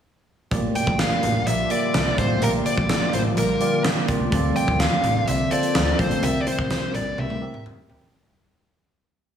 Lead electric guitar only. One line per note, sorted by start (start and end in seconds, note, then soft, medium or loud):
0.76 0.99 G5 medium
1.00 1.47 F5 medium
1.47 1.69 E5 medium
1.71 2.15 D5 medium
2.19 2.43 C5 medium
2.43 2.49 A#4 medium
2.66 3.14 D5 medium
3.14 3.20 C5 medium
3.38 3.82 A#4 medium
4.56 4.78 G5 medium
4.80 5.25 F5 medium
5.28 5.52 E5 medium
5.52 5.99 D5 medium
6.00 6.24 C5 medium
6.23 6.40 E5 medium
6.41 6.47 D5 medium
6.48 6.95 C5 medium
6.95 7.19 D5 medium
7.19 7.63 E5 medium